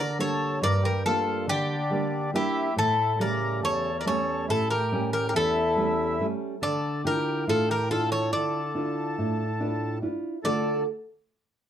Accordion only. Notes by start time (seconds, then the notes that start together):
Already playing: A#4
0.19 A4
0.63 A#4
0.83 G4
1.06 F4
1.49 D4
2.35 E4
2.78 E4
3.21 A#4
3.63 A4
3.99 A#4
4.05 A4
4.48 E4
4.70 G4
5.13 G4
5.28 G4
5.35 E4
6.62 A4
7.05 G4
7.48 F4
7.69 G4
7.90 F4
8.11 A4
8.33 A4
10.43 A4